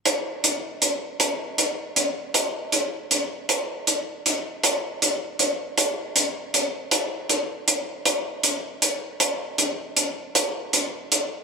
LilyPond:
\new DrumStaff \with { instrumentName = "Drums" } \drummode { \time 6/8 \tempo 4. = 52 hh8 hh8 hh8 hh8 hh8 hh8 | hh8 hh8 hh8 hh8 hh8 hh8 | hh8 hh8 hh8 hh8 hh8 hh8 | hh8 hh8 hh8 hh8 hh8 hh8 |
hh8 hh8 hh8 hh8 hh8 hh8 | }